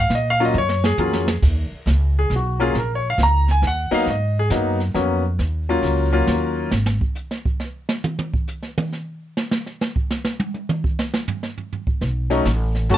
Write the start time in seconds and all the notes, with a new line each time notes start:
0.00 F5
0.10 A#2, brush sweep, snare
0.15 D#5
0.30 F5
0.40 F#3 A#3 C#4 F4
0.45 D#5
0.54 F#2, hi-hat pedal
0.58 C#5
0.69 snare
0.84 G#4, snare
0.98 F2 F#3 A#3 C#4 F4, hi-hat pedal, mid tom
1.13 snare
1.28 snare
1.42 D#2, brush sweep, kick, snare, crash
1.71 muted upright bass stroke
1.86 C#2, kick, snare, hi-hat pedal
2.19 G#4
2.30 B1, kick, snare
2.36 F#4
2.59 F#3 A#3 C#4 F4 G#4
2.74 A#1, brush sweep, kick, snare
2.79 A#4
2.95 C#5
3.10 F5
3.18 C#2, kick, snare, hi-hat pedal
3.23 A#5
3.48 G#5, snare
3.62 D#2, kick, snare
3.67 F#5
3.91 F#3 A#3 B3 D#4 F5, muted upright bass stroke
4.06 G#2, brush sweep, kick, snare
4.10 D#5
4.39 G#4
4.50 F#2 F#3 A#3 B3 D#4, kick, snare, hi-hat pedal
4.80 snare
4.94 F2 F#3 A#3 B3 C#4, kick, snare
5.39 D#2, brush sweep, kick, snare
5.69 F#3 A#3 C#4 F4
5.83 C#2, kick, snare
6.13 F#3 A#3 C#4 F4
6.27 D#2, kick, snare, hi-hat pedal
6.71 G#1, snare
6.86 snare
7.01 kick
7.15 hi-hat pedal
7.31 snare
7.45 kick
7.60 snare
7.89 snare
8.04 mid tom
8.19 mid tom
8.34 kick
8.48 hi-hat pedal
8.62 snare
8.78 mid tom
8.92 snare
9.37 snare
9.51 snare
9.66 snare
9.81 snare, hi-hat pedal
9.96 kick
10.11 snare
10.25 snare
10.40 high tom
10.54 high tom
10.69 mid tom
10.84 kick
10.99 snare
11.13 snare, hi-hat pedal
11.28 floor tom
11.43 snare
11.58 floor tom
11.73 floor tom
11.87 kick
12.01 B1, brush sweep, kick, snare
12.30 F#3 A3 C#4 D#4, snare
12.45 A1, kick, snare, hi-hat pedal
12.75 snare
12.89 F#1 F#3 A3 C#4 F#4, kick, snare
12.94 A5